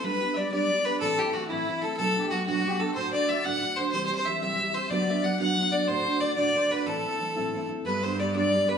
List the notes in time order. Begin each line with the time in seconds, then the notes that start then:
0.03 G3 B3 D4 G4 B4
0.21 B3 D4 G4
0.33 G3 D5 E5
0.38 B3 D4 G4 D5
0.51 G3 B3 D4 G4 D5
0.70 G3 B3 D4 G4
0.85 B3 D4 G4 B4
1.00 A2 E3 A3 C4 E4 A4
1.18 A3 C4 E4 G4
1.33 E3 A3 C4 F#4
1.38 E4
1.47 A3 C4 E4
1.51 A2 E3 E4
1.67 E3 A3 C4 E4
1.82 A3 E4 A4
1.86 C4
1.96 B2 F#3 A3 B3 D4 A4
2.15 A3 B3 D4 G4
2.30 F#3 A3 B3 F#4
2.34 D4
2.46 B2 F#3 A3 B3 D4 F#4
2.60 F#4
2.64 F#3 A3 B3 D4 G4
2.71 F#4
2.79 A3 B3 D4 A4
2.94 D2 A2 D3 A3 D4 F#4 C5
3.12 D3 A3 D4 F#4 D5
3.28 D3 A3 D4 E5
3.33 F#4
3.44 D2 A2 D3 A3 D4 F#4 F#5
3.61 D3 A3 D4 F#4
3.76 A3 D4 F#4 C5
3.81 D3
3.92 C3 E3 G3 C4 G4 C5
4.06 G4 C5
4.12 G3 C4 C5
4.17 C5
4.25 E3 G3 C4 E5
4.29 G4
4.41 C3 E3 G3 C4 G4 E5
4.59 E3 G3 C4 G4
4.74 C4 G4 C5
4.78 G3
4.90 D2 D3 F#3 B3 D4 F#4 D5
5.07 F#3 B3 D4 F#4 E5
5.23 F#3 B3 D4 F#4 F#5
5.39 D2 D3 F#3 B3 D4 F#4 F#5
5.56 F#3 B3 D4 F#4
5.71 F#3 B3 D4 F#4 D5
5.87 D2 A2 D3 A3 D4 F#4 C5
6.05 D3 A3 D4 F#4
6.20 D3 A3 D4 F#4 D5
6.36 D2 A2 D3 A3 D4 F#4 D5
6.54 D3 A3 D4 F#4 C5
6.69 D3 A3 D4 F#4 B4
6.86 A2 E3 A3 C4 E4 A4
7.04 A3 C4 E4
7.20 E3 A3 C4 E4
7.36 A2 E3 A3 C4 E4
7.53 E3 A3 C4 E4
7.69 A3 C4 E4
7.85 G2 G3 B3 D4 G4 B4
8.03 B3 D4 G4 C5
8.18 G3 B3 D4 G4 D5
8.34 G3 B3 D4 G4 D5
8.52 G3 B3 D4 G4
8.68 B3 D4 G4 B4